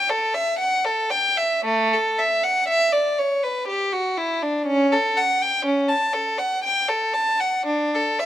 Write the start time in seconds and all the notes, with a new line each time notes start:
0.09 A4
0.34 E5
0.59 F#5
0.85 A4
1.11 G5
1.38 E5
1.65 A3
1.93 A4
2.19 E5
2.44 F#5
2.68 E5
2.92 D5
3.19 C#5
3.43 B4
3.67 G4
3.92 F#4
4.18 E4
4.43 D4
4.66 C#4
4.92 A4
5.17 F#5
5.42 G5
5.65 C#4
5.89 A5
6.13 A4
6.38 F#5
6.64 G5
6.89 A4
7.14 A5
7.40 F#5
7.66 D4
7.95 A4
8.19 E5